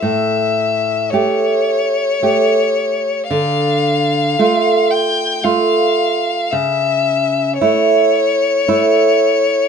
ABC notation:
X:1
M:3/4
L:1/8
Q:1/4=56
K:Aphr
V:1 name="Violin"
e2 ^c4 | f3 g f2 | e2 ^c4 |]
V:2 name="Nylon-string guitar"
A,,2 [A,G]2 [A,G]2 | D,2 [A,F]2 [A,F]2 | ^C,2 [A,E]2 [A,E]2 |]